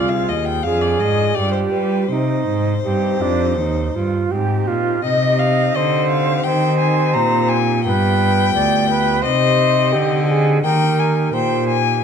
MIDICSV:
0, 0, Header, 1, 5, 480
1, 0, Start_track
1, 0, Key_signature, -3, "minor"
1, 0, Tempo, 711744
1, 910, Tempo, 733496
1, 1391, Time_signature, 4, 2, 24, 8
1, 3790, Tempo, 699301
1, 8107, End_track
2, 0, Start_track
2, 0, Title_t, "Violin"
2, 0, Program_c, 0, 40
2, 0, Note_on_c, 0, 74, 82
2, 62, Note_on_c, 0, 77, 78
2, 72, Note_off_c, 0, 74, 0
2, 191, Note_on_c, 0, 75, 70
2, 201, Note_off_c, 0, 77, 0
2, 305, Note_on_c, 0, 79, 79
2, 315, Note_off_c, 0, 75, 0
2, 423, Note_on_c, 0, 77, 88
2, 433, Note_off_c, 0, 79, 0
2, 551, Note_on_c, 0, 74, 74
2, 561, Note_off_c, 0, 77, 0
2, 669, Note_on_c, 0, 75, 79
2, 679, Note_off_c, 0, 74, 0
2, 906, Note_on_c, 0, 74, 83
2, 916, Note_off_c, 0, 75, 0
2, 1020, Note_off_c, 0, 74, 0
2, 1024, Note_on_c, 0, 72, 63
2, 1073, Note_off_c, 0, 72, 0
2, 1143, Note_on_c, 0, 71, 74
2, 1388, Note_on_c, 0, 72, 83
2, 1398, Note_off_c, 0, 71, 0
2, 3079, Note_off_c, 0, 72, 0
2, 3318, Note_on_c, 0, 75, 97
2, 3556, Note_on_c, 0, 77, 93
2, 3566, Note_off_c, 0, 75, 0
2, 3786, Note_on_c, 0, 75, 86
2, 3796, Note_off_c, 0, 77, 0
2, 4028, Note_off_c, 0, 75, 0
2, 4033, Note_on_c, 0, 77, 85
2, 4262, Note_on_c, 0, 79, 87
2, 4273, Note_off_c, 0, 77, 0
2, 4494, Note_off_c, 0, 79, 0
2, 4498, Note_on_c, 0, 80, 84
2, 4746, Note_on_c, 0, 82, 88
2, 4756, Note_off_c, 0, 80, 0
2, 4980, Note_on_c, 0, 80, 94
2, 4990, Note_off_c, 0, 82, 0
2, 5224, Note_off_c, 0, 80, 0
2, 5228, Note_on_c, 0, 79, 108
2, 6170, Note_off_c, 0, 79, 0
2, 6185, Note_on_c, 0, 75, 102
2, 7009, Note_off_c, 0, 75, 0
2, 7145, Note_on_c, 0, 79, 108
2, 7385, Note_on_c, 0, 80, 86
2, 7396, Note_off_c, 0, 79, 0
2, 7620, Note_off_c, 0, 80, 0
2, 7624, Note_on_c, 0, 79, 82
2, 7857, Note_off_c, 0, 79, 0
2, 7861, Note_on_c, 0, 80, 93
2, 8107, Note_off_c, 0, 80, 0
2, 8107, End_track
3, 0, Start_track
3, 0, Title_t, "Flute"
3, 0, Program_c, 1, 73
3, 0, Note_on_c, 1, 65, 77
3, 261, Note_off_c, 1, 65, 0
3, 432, Note_on_c, 1, 68, 68
3, 911, Note_on_c, 1, 67, 69
3, 921, Note_off_c, 1, 68, 0
3, 1391, Note_off_c, 1, 67, 0
3, 1404, Note_on_c, 1, 63, 61
3, 1825, Note_off_c, 1, 63, 0
3, 1889, Note_on_c, 1, 67, 65
3, 2132, Note_on_c, 1, 62, 73
3, 2142, Note_off_c, 1, 67, 0
3, 2377, Note_on_c, 1, 63, 54
3, 2386, Note_off_c, 1, 62, 0
3, 2615, Note_on_c, 1, 65, 60
3, 2625, Note_off_c, 1, 63, 0
3, 2849, Note_on_c, 1, 67, 65
3, 2859, Note_off_c, 1, 65, 0
3, 3086, Note_on_c, 1, 65, 67
3, 3096, Note_off_c, 1, 67, 0
3, 3325, Note_off_c, 1, 65, 0
3, 3331, Note_on_c, 1, 75, 77
3, 3797, Note_on_c, 1, 72, 75
3, 3807, Note_off_c, 1, 75, 0
3, 4267, Note_off_c, 1, 72, 0
3, 4271, Note_on_c, 1, 72, 85
3, 5045, Note_off_c, 1, 72, 0
3, 5233, Note_on_c, 1, 71, 77
3, 5701, Note_off_c, 1, 71, 0
3, 5705, Note_on_c, 1, 74, 75
3, 5943, Note_off_c, 1, 74, 0
3, 5949, Note_on_c, 1, 71, 78
3, 6173, Note_on_c, 1, 72, 73
3, 6183, Note_off_c, 1, 71, 0
3, 6655, Note_on_c, 1, 67, 70
3, 6665, Note_off_c, 1, 72, 0
3, 6898, Note_off_c, 1, 67, 0
3, 6902, Note_on_c, 1, 68, 74
3, 7134, Note_off_c, 1, 68, 0
3, 7138, Note_on_c, 1, 70, 77
3, 7624, Note_on_c, 1, 72, 78
3, 7634, Note_off_c, 1, 70, 0
3, 7938, Note_off_c, 1, 72, 0
3, 8107, End_track
4, 0, Start_track
4, 0, Title_t, "Pipe organ"
4, 0, Program_c, 2, 19
4, 0, Note_on_c, 2, 36, 49
4, 0, Note_on_c, 2, 60, 36
4, 0, Note_on_c, 2, 65, 38
4, 0, Note_on_c, 2, 68, 41
4, 164, Note_off_c, 2, 60, 0
4, 166, Note_off_c, 2, 36, 0
4, 194, Note_on_c, 2, 39, 44
4, 403, Note_off_c, 2, 65, 0
4, 405, Note_off_c, 2, 68, 0
4, 407, Note_off_c, 2, 39, 0
4, 435, Note_on_c, 2, 41, 57
4, 438, Note_on_c, 2, 62, 43
4, 440, Note_on_c, 2, 65, 42
4, 443, Note_on_c, 2, 68, 39
4, 648, Note_off_c, 2, 41, 0
4, 674, Note_on_c, 2, 44, 53
4, 888, Note_off_c, 2, 62, 0
4, 889, Note_off_c, 2, 65, 0
4, 890, Note_off_c, 2, 44, 0
4, 891, Note_off_c, 2, 68, 0
4, 916, Note_on_c, 2, 62, 45
4, 918, Note_on_c, 2, 43, 51
4, 921, Note_on_c, 2, 65, 39
4, 922, Note_on_c, 2, 67, 39
4, 1130, Note_off_c, 2, 43, 0
4, 1154, Note_on_c, 2, 55, 52
4, 1367, Note_off_c, 2, 62, 0
4, 1369, Note_off_c, 2, 55, 0
4, 1370, Note_off_c, 2, 65, 0
4, 1371, Note_off_c, 2, 67, 0
4, 1401, Note_on_c, 2, 48, 50
4, 1615, Note_off_c, 2, 48, 0
4, 1639, Note_on_c, 2, 44, 47
4, 1854, Note_off_c, 2, 44, 0
4, 1876, Note_on_c, 2, 60, 34
4, 1878, Note_on_c, 2, 43, 46
4, 1881, Note_on_c, 2, 63, 38
4, 1886, Note_on_c, 2, 67, 35
4, 2096, Note_off_c, 2, 43, 0
4, 2119, Note_on_c, 2, 41, 48
4, 2334, Note_off_c, 2, 60, 0
4, 2336, Note_off_c, 2, 41, 0
4, 2336, Note_off_c, 2, 63, 0
4, 2339, Note_off_c, 2, 67, 0
4, 2361, Note_on_c, 2, 39, 45
4, 2576, Note_off_c, 2, 39, 0
4, 2600, Note_on_c, 2, 43, 52
4, 2815, Note_off_c, 2, 43, 0
4, 2833, Note_on_c, 2, 60, 40
4, 2835, Note_on_c, 2, 44, 51
4, 2837, Note_on_c, 2, 63, 38
4, 2838, Note_on_c, 2, 67, 42
4, 3054, Note_off_c, 2, 44, 0
4, 3078, Note_on_c, 2, 46, 42
4, 3271, Note_off_c, 2, 60, 0
4, 3280, Note_off_c, 2, 63, 0
4, 3284, Note_on_c, 2, 60, 42
4, 3291, Note_off_c, 2, 67, 0
4, 3293, Note_on_c, 2, 63, 48
4, 3296, Note_off_c, 2, 46, 0
4, 3304, Note_on_c, 2, 67, 49
4, 3312, Note_on_c, 2, 48, 50
4, 3758, Note_off_c, 2, 48, 0
4, 3786, Note_on_c, 2, 50, 53
4, 4241, Note_off_c, 2, 50, 0
4, 4261, Note_on_c, 2, 51, 61
4, 4720, Note_off_c, 2, 51, 0
4, 4751, Note_on_c, 2, 46, 58
4, 5189, Note_off_c, 2, 60, 0
4, 5194, Note_off_c, 2, 63, 0
4, 5200, Note_off_c, 2, 67, 0
4, 5203, Note_on_c, 2, 59, 46
4, 5209, Note_off_c, 2, 46, 0
4, 5212, Note_on_c, 2, 65, 52
4, 5225, Note_on_c, 2, 67, 53
4, 5237, Note_on_c, 2, 43, 55
4, 5688, Note_off_c, 2, 43, 0
4, 5707, Note_on_c, 2, 38, 45
4, 6149, Note_off_c, 2, 59, 0
4, 6154, Note_off_c, 2, 65, 0
4, 6155, Note_on_c, 2, 60, 54
4, 6160, Note_off_c, 2, 67, 0
4, 6162, Note_off_c, 2, 38, 0
4, 6165, Note_on_c, 2, 63, 52
4, 6175, Note_on_c, 2, 67, 49
4, 6183, Note_on_c, 2, 48, 56
4, 6639, Note_off_c, 2, 48, 0
4, 6667, Note_on_c, 2, 50, 61
4, 7103, Note_off_c, 2, 60, 0
4, 7108, Note_off_c, 2, 63, 0
4, 7113, Note_off_c, 2, 67, 0
4, 7114, Note_on_c, 2, 58, 49
4, 7120, Note_off_c, 2, 50, 0
4, 7123, Note_on_c, 2, 63, 50
4, 7135, Note_on_c, 2, 67, 52
4, 7143, Note_on_c, 2, 51, 49
4, 7596, Note_off_c, 2, 51, 0
4, 7622, Note_on_c, 2, 46, 46
4, 8078, Note_off_c, 2, 46, 0
4, 8107, Note_off_c, 2, 58, 0
4, 8107, Note_off_c, 2, 63, 0
4, 8107, Note_off_c, 2, 67, 0
4, 8107, End_track
5, 0, Start_track
5, 0, Title_t, "Cello"
5, 0, Program_c, 3, 42
5, 0, Note_on_c, 3, 36, 54
5, 194, Note_on_c, 3, 39, 60
5, 204, Note_off_c, 3, 36, 0
5, 435, Note_on_c, 3, 41, 62
5, 445, Note_off_c, 3, 39, 0
5, 676, Note_on_c, 3, 44, 64
5, 686, Note_off_c, 3, 41, 0
5, 914, Note_off_c, 3, 44, 0
5, 920, Note_on_c, 3, 43, 57
5, 1149, Note_off_c, 3, 43, 0
5, 1153, Note_on_c, 3, 55, 59
5, 1388, Note_off_c, 3, 55, 0
5, 1396, Note_on_c, 3, 48, 56
5, 1631, Note_off_c, 3, 48, 0
5, 1641, Note_on_c, 3, 44, 60
5, 1875, Note_off_c, 3, 44, 0
5, 1885, Note_on_c, 3, 43, 60
5, 2118, Note_off_c, 3, 43, 0
5, 2131, Note_on_c, 3, 41, 59
5, 2366, Note_on_c, 3, 39, 59
5, 2376, Note_off_c, 3, 41, 0
5, 2602, Note_off_c, 3, 39, 0
5, 2605, Note_on_c, 3, 43, 57
5, 2837, Note_off_c, 3, 43, 0
5, 2845, Note_on_c, 3, 44, 56
5, 3079, Note_off_c, 3, 44, 0
5, 3088, Note_on_c, 3, 46, 50
5, 3321, Note_off_c, 3, 46, 0
5, 3329, Note_on_c, 3, 48, 60
5, 3767, Note_off_c, 3, 48, 0
5, 3792, Note_on_c, 3, 50, 71
5, 4263, Note_off_c, 3, 50, 0
5, 4275, Note_on_c, 3, 51, 72
5, 4757, Note_on_c, 3, 46, 78
5, 4767, Note_off_c, 3, 51, 0
5, 5237, Note_on_c, 3, 43, 71
5, 5247, Note_off_c, 3, 46, 0
5, 5712, Note_off_c, 3, 43, 0
5, 5716, Note_on_c, 3, 38, 59
5, 6184, Note_off_c, 3, 38, 0
5, 6197, Note_on_c, 3, 48, 71
5, 6673, Note_on_c, 3, 50, 79
5, 6683, Note_off_c, 3, 48, 0
5, 7147, Note_off_c, 3, 50, 0
5, 7151, Note_on_c, 3, 51, 70
5, 7618, Note_off_c, 3, 51, 0
5, 7629, Note_on_c, 3, 46, 67
5, 8099, Note_off_c, 3, 46, 0
5, 8107, End_track
0, 0, End_of_file